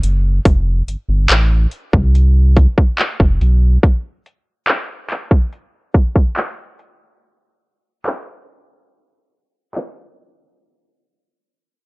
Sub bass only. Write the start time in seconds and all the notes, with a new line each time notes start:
0.03 F#1
0.45 F1
0.88 G1
1.09 G1
1.30 A1
1.93 C2
3.20 F1
3.41 B1